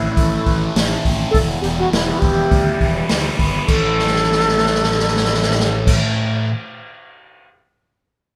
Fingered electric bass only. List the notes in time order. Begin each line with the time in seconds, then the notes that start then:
0.17 A1
0.47 A1
0.75 A1
1.06 A1
1.35 E1
1.64 E1
1.92 E1
2.22 E1
2.52 D2
2.81 E1
3.10 D2
3.39 G1
3.69 A1